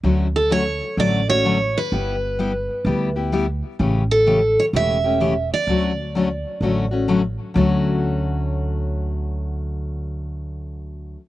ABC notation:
X:1
M:4/4
L:1/8
Q:"Swing" 1/4=128
K:D
V:1 name="Steel-string acoustic guitar"
z A c2 d c2 B- | B4- B z3 | z A2 c e3 d- | d6 z2 |
z8 | z8 |]
V:2 name="Steel-string acoustic guitar"
[D,F,A,CF] z [D,F,A,CF] z [D,F,A,CF] [A,CF] [D,F,A,CF] z | [G,B,EG] z [G,B,EG] z [G,B,EG] [B,EG] [G,B,EG] z | [C,E,A,CG] z [C,E,A,CG] z [C,E,A,CG] [A,CG] [C,E,A,CG] z | [D,F,A,CF] z [D,F,A,CF] z [D,F,A,CF] [A,CF] [D,F,A,CF] z |
[D,F,A,CF]8- | [D,F,A,CF]8 |]
V:3 name="Upright bass" clef=bass
D,,4 A,,,4 | G,,,4 D,,4 | A,,,4 E,,,4 | D,,4 A,,,4 |
D,,8- | D,,8 |]